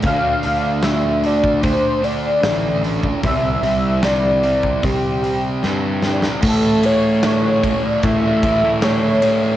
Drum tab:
CC |----------------|----------------|x---------------|
RD |----------------|----------------|--x-x-x-x-x-x-x-|
HH |o-o-o-o-o-o-o-o-|o-o-o-o-o-o-----|----------------|
SD |----o-------o---|----o-------o-oo|----o-------o-o-|
BD |o------oo------o|o------oo-------|o-----o-o-o-----|